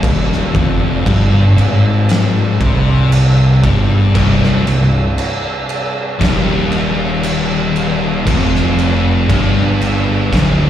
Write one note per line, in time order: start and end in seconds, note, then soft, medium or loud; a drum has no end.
0.00 0.50 D#1 loud
0.00 0.52 D#2 loud
0.00 10.70 C3 medium
0.00 10.70 G3 medium
0.00 10.70 D4 medium
0.00 kick loud
0.04 crash medium
0.32 snare soft
0.54 1.02 F1 loud
0.54 1.04 F2 loud
0.54 kick loud
0.54 crash medium
1.06 1.54 G1 loud
1.06 1.56 G2 loud
1.06 kick loud
1.06 crash medium
1.57 2.56 G#1 loud
1.57 2.58 G#2 loud
1.57 crash medium
2.09 snare loud
2.09 crash medium
2.60 3.59 C2 medium
2.60 3.62 C3 loud
2.60 kick loud
2.60 crash medium
3.12 crash medium
3.63 4.11 G1 loud
3.63 4.13 G2 loud
3.63 kick loud
3.63 crash medium
4.15 4.63 C1 loud
4.15 4.64 C2 loud
4.15 kick loud
4.15 crash medium
4.43 snare soft
4.65 5.14 C1 medium
4.65 5.07 C2 medium
4.65 crash medium
5.18 crash medium
5.69 crash medium
6.19 8.22 D#1 loud
6.19 8.24 D#2 medium
6.19 kick loud
6.19 crash medium
6.23 snare loud
6.72 crash medium
7.23 crash medium
7.76 crash medium
8.25 9.25 F1 loud
8.25 9.27 F2 loud
8.25 kick loud
8.25 crash medium
8.55 snare soft
8.79 crash medium
9.28 10.28 G1 loud
9.28 10.30 G2 loud
9.28 kick loud
9.28 crash medium
9.81 crash medium
10.33 10.70 D1 loud
10.33 10.70 D2 loud
10.33 kick loud
10.33 snare loud
10.33 crash medium